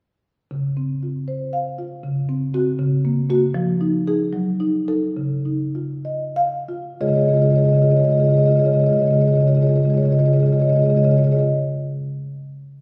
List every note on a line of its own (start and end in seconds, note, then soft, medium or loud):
0.51 1.99 C#3 medium
0.77 1.18 C4 soft
1.03 1.43 F4 soft
1.28 1.68 C5 medium
1.53 1.94 F5 medium
1.78 2.04 F4 medium
2.03 2.77 C#3 medium
2.29 2.53 C4 medium
2.54 2.76 C4 soft
2.54 2.77 F#4 medium
2.79 3.52 C#3 medium
3.05 3.28 A#3 medium
3.30 3.52 A#3 medium
3.30 3.53 F#4 loud
3.54 4.31 F3 medium
3.81 4.06 D#4 medium
4.07 4.31 D#4 medium
4.07 4.31 G#4 medium
4.33 5.13 F#3 medium
4.60 4.87 D#4 medium
4.88 5.13 D#4 medium
4.88 5.14 A4 medium
5.17 6.97 C#3 medium
5.46 5.93 D#4 medium
5.75 6.24 F4 soft
6.05 6.55 D#5 medium
6.36 6.88 F5 medium
6.69 7.00 F4 medium
7.01 7.09 C#3 medium
7.01 7.10 G#3 medium
7.01 7.09 F4 medium
7.01 7.09 G#4 medium
7.01 7.08 C#5 medium
7.01 7.07 D#5 medium
7.07 7.19 C#3 medium
7.07 7.17 G#3 soft
7.07 7.17 F4 soft
7.07 7.16 G#4 medium
7.07 7.15 C#5 soft
7.07 7.13 D#5 soft
7.13 7.23 G#4 medium
7.13 7.21 C#5 soft
7.13 7.19 D#5 medium
7.17 7.29 C#3 medium
7.17 7.25 G#3 soft
7.17 7.26 F4 soft
7.17 7.26 D#5 soft
7.21 7.35 G#3 soft
7.21 7.30 G#4 soft
7.21 7.28 C#5 soft
7.26 7.37 C#3 soft
7.26 7.33 F4 soft
7.26 7.35 C#5 soft
7.26 7.34 D#5 soft
7.30 7.42 F4 medium
7.30 7.36 G#4 medium
7.30 7.40 D#5 soft
7.35 7.46 C#3 medium
7.35 7.42 G#3 soft
7.35 7.43 G#4 medium
7.35 7.42 C#5 soft
7.40 7.51 G#3 soft
7.40 7.50 F4 soft
7.40 7.51 G#4 medium
7.40 7.50 C#5 medium
7.40 7.46 D#5 soft
7.46 7.55 C#3 medium
7.46 7.53 D#5 soft
7.50 7.59 G#3 soft
7.50 7.58 F4 medium
7.50 7.58 G#4 soft
7.50 7.56 C#5 soft
7.50 7.58 D#5 medium
7.55 7.64 C#3 medium
7.55 7.65 F4 soft
7.55 7.66 G#4 medium
7.55 7.63 C#5 medium
7.55 7.65 D#5 soft
7.59 7.68 G#3 soft
7.59 7.69 C#5 soft
7.64 7.73 C#3 medium
7.64 7.73 F4 soft
7.64 7.75 G#4 soft
7.64 7.71 D#5 medium
7.68 7.76 G#3 soft
7.68 7.76 C#5 soft
7.68 7.78 D#5 soft
7.73 7.82 C#3 medium
7.73 7.84 G#3 soft
7.73 7.82 F4 soft
7.73 7.82 G#4 medium
7.73 7.83 C#5 soft
7.78 7.91 C#3 soft
7.78 7.90 F4 medium
7.78 7.89 G#4 medium
7.78 7.85 D#5 medium
7.83 7.91 G#3 soft
7.83 7.90 C#5 medium
7.83 7.92 D#5 soft
7.89 8.00 C#3 medium
7.89 8.00 G#3 soft
7.89 7.98 F4 soft
7.89 7.97 G#4 medium
7.89 7.97 C#5 soft
7.89 7.98 D#5 medium
7.97 8.09 C#3 medium
7.97 8.08 G#3 soft
7.97 8.07 F4 soft
7.97 8.05 G#4 medium
7.97 8.04 C#5 medium
7.97 8.05 D#5 soft
8.04 8.15 F4 soft
8.04 8.13 G#4 medium
8.04 8.10 C#5 soft
8.04 8.11 D#5 soft
8.08 8.19 C#3 medium
8.08 8.16 G#3 soft
8.08 8.17 C#5 soft
8.08 8.18 D#5 soft
8.13 8.26 G#3 soft
8.13 8.23 F4 soft
8.13 8.20 G#4 medium
8.17 8.29 C#3 medium
8.17 8.27 G#4 medium
8.17 8.24 C#5 soft
8.17 8.25 D#5 soft
8.23 8.35 G#3 soft
8.23 8.31 F4 soft
8.23 8.30 C#5 soft
8.23 8.32 D#5 medium
8.27 8.37 C#3 medium
8.27 8.39 F4 medium
8.27 8.34 G#4 soft
8.27 8.37 C#5 soft
8.32 8.43 G#3 soft
8.32 8.40 G#4 medium
8.32 8.39 D#5 medium
8.37 8.47 C#3 soft
8.37 8.48 F4 soft
8.37 8.46 G#4 medium
8.37 8.43 C#5 soft
8.37 8.46 D#5 soft
8.43 8.55 C#3 medium
8.43 8.52 G#3 soft
8.43 8.52 G#4 medium
8.43 8.51 C#5 soft
8.43 8.52 D#5 medium
8.48 8.56 F4 soft
8.48 8.57 C#5 soft
8.52 8.65 C#3 soft
8.52 8.60 G#3 soft
8.52 8.64 F4 soft
8.52 8.59 G#4 medium
8.52 8.59 D#5 soft
8.57 8.68 G#3 soft
8.57 8.66 G#4 medium
8.57 8.66 C#5 soft
8.57 8.66 D#5 medium
8.64 8.75 C#3 medium
8.64 8.72 F4 medium
8.64 8.74 G#4 medium
8.64 8.72 C#5 medium
8.64 8.73 D#5 soft
8.68 8.75 G#3 soft
8.68 8.81 F4 soft
8.72 8.84 C#3 medium
8.72 8.84 G#3 soft
8.72 8.81 G#4 medium
8.72 8.80 C#5 soft
8.72 8.79 D#5 soft
8.79 8.89 F4 soft
8.79 8.89 G#4 medium
8.79 8.86 C#5 soft
8.79 8.86 D#5 soft
8.84 8.93 C#3 medium
8.84 8.91 G#3 soft
8.84 8.93 C#5 soft
8.84 8.93 D#5 medium
8.89 9.02 C#3 medium
8.89 9.00 G#3 soft
8.89 8.98 F4 soft
8.89 8.96 G#4 medium
8.93 9.04 G#4 medium
8.93 9.01 C#5 soft
8.93 8.99 D#5 soft
8.98 9.08 G#3 soft
8.98 9.06 F4 soft
8.98 9.08 C#5 soft
8.98 9.06 D#5 medium
9.02 9.11 C#3 medium
9.02 9.11 G#4 medium
9.06 9.17 G#3 soft
9.06 9.13 F4 soft
9.06 9.14 C#5 medium
9.06 9.13 D#5 soft
9.11 9.20 C#3 medium
9.11 9.22 F4 soft
9.11 9.18 G#4 medium
9.11 9.21 C#5 soft
9.11 9.21 D#5 medium
9.17 9.28 C#3 medium
9.17 9.25 G#3 soft
9.17 9.26 G#4 medium
9.17 9.27 D#5 soft
9.21 9.34 G#3 soft
9.21 9.31 F4 soft
9.21 9.28 C#5 medium
9.26 9.37 C#3 soft
9.26 9.33 G#4 medium
9.26 9.36 C#5 soft
9.26 9.34 D#5 medium
9.31 9.43 G#3 soft
9.31 9.39 F4 medium
9.31 9.41 G#4 medium
9.31 9.40 D#5 soft
9.36 9.47 C#3 medium
9.36 9.47 F4 soft
9.36 9.42 C#5 soft
9.40 9.52 G#3 soft
9.40 9.47 G#4 medium
9.40 9.49 C#5 soft
9.40 9.48 D#5 soft
9.47 9.57 C#3 medium
9.47 9.55 F4 medium
9.47 9.55 G#4 medium
9.47 9.56 C#5 soft
9.47 9.55 D#5 soft
9.52 9.61 G#3 soft
9.52 9.62 F4 soft
9.52 9.62 G#4 medium
9.52 9.63 C#5 soft
9.52 9.61 D#5 medium
9.57 9.67 C#3 medium
9.57 9.68 G#3 soft
9.61 9.70 F4 medium
9.61 9.69 G#4 medium
9.61 9.69 C#5 soft
9.61 9.67 D#5 soft
9.67 9.76 C#3 medium
9.67 9.77 G#3 soft
9.67 9.77 F4 soft
9.67 9.76 G#4 medium
9.67 9.76 C#5 soft
9.67 9.74 D#5 medium
9.74 9.85 C#3 medium
9.74 9.85 G#3 soft
9.74 9.85 F4 soft
9.74 9.83 G#4 medium
9.74 9.83 C#5 soft
9.74 9.80 D#5 soft
9.80 9.90 G#4 soft
9.80 9.90 C#5 soft
9.80 9.87 D#5 soft
9.85 9.95 C#3 soft
9.85 9.94 G#3 soft
9.85 9.94 F4 soft
9.85 9.94 D#5 soft
9.90 10.02 G#3 soft
9.90 9.97 G#4 medium
9.90 9.98 C#5 soft
9.90 10.00 D#5 soft
9.94 10.05 C#3 medium
9.94 10.02 F4 medium
9.94 10.03 G#4 medium
9.94 10.05 C#5 soft
10.00 10.11 G#3 soft
10.00 10.11 F4 soft
10.00 10.10 G#4 medium
10.00 10.06 D#5 soft
10.05 10.14 C#3 medium
10.05 10.12 C#5 medium
10.05 10.12 D#5 soft
10.10 10.19 G#3 soft
10.10 10.20 F4 soft
10.10 10.18 G#4 medium
10.10 10.20 C#5 soft
10.10 10.19 D#5 soft
10.14 10.25 C#3 medium
10.18 10.28 G#3 soft
10.18 10.28 F4 soft
10.18 10.26 G#4 medium
10.18 10.26 C#5 soft
10.18 10.26 D#5 medium
10.25 10.33 C#3 medium
10.25 10.36 G#3 soft
10.25 10.36 F4 medium
10.25 10.33 G#4 medium
10.25 10.33 C#5 soft
10.25 10.33 D#5 soft
10.33 10.43 C#3 medium
10.33 10.45 G#3 soft
10.33 10.44 F4 soft
10.33 10.40 G#4 medium
10.33 10.40 C#5 soft
10.33 10.39 D#5 soft
10.39 10.52 C#3 medium
10.39 10.46 G#4 medium
10.39 10.48 C#5 soft
10.39 10.46 D#5 soft
10.44 10.53 G#3 soft
10.44 10.52 F4 soft
10.44 10.53 G#4 medium
10.44 10.55 C#5 soft
10.44 10.53 D#5 medium
10.52 10.61 C#3 medium
10.52 10.61 G#3 soft
10.52 10.61 F4 medium
10.52 10.60 G#4 medium
10.52 10.62 C#5 soft
10.52 10.60 D#5 soft
10.60 10.70 C#3 medium
10.60 10.70 G#3 soft
10.60 10.70 F4 medium
10.60 10.67 G#4 medium
10.60 10.69 C#5 medium
10.60 10.65 D#5 medium
10.65 10.75 G#4 soft
10.65 10.73 D#5 soft
10.69 10.79 C#3 medium
10.69 10.77 G#3 soft
10.69 10.78 F4 soft
10.69 10.76 C#5 soft
10.69 10.79 D#5 medium
10.75 10.90 C#3 medium
10.75 10.86 G#3 soft
10.75 10.86 F4 soft
10.75 10.82 G#4 medium
10.75 10.83 C#5 soft
10.79 10.89 G#4 medium
10.79 10.90 C#5 soft
10.79 10.85 D#5 soft
10.85 10.96 G#3 soft
10.85 10.95 F4 soft
10.85 10.96 G#4 medium
10.85 10.91 D#5 medium
10.90 10.97 C#3 medium
10.90 10.96 C#5 soft
10.90 10.98 D#5 soft
10.95 11.05 C#3 medium
10.95 11.04 G#3 soft
10.95 11.03 F4 medium
10.95 11.03 G#4 soft
10.95 11.04 C#5 soft
10.95 11.04 D#5 medium
11.03 11.14 C#3 medium
11.03 11.11 G#3 soft
11.03 11.11 F4 soft
11.03 11.10 G#4 medium
11.03 11.12 C#5 medium
11.03 11.11 D#5 soft
11.10 11.23 C#3 medium
11.10 11.20 G#3 soft
11.10 11.19 F4 soft
11.10 11.16 G#4 medium
11.10 11.18 C#5 soft
11.10 11.17 D#5 medium
11.16 11.28 G#3 soft
11.16 11.27 F4 soft
11.16 11.24 G#4 medium
11.16 11.25 C#5 soft
11.16 11.24 D#5 soft
11.23 11.32 C#3 medium
11.23 11.31 G#4 medium
11.23 11.32 C#5 soft
11.23 11.32 D#5 medium
11.27 11.37 G#3 soft
11.27 11.35 F4 soft
11.31 11.40 C#3 soft
11.31 11.43 F4 soft
11.31 11.39 G#4 medium
11.31 11.40 C#5 medium
11.31 11.39 D#5 soft
11.37 11.47 C#3 medium
11.37 11.47 G#3 soft
11.37 11.47 G#4 medium
11.37 11.47 C#5 soft
11.37 11.47 D#5 soft
11.43 11.47 F4 soft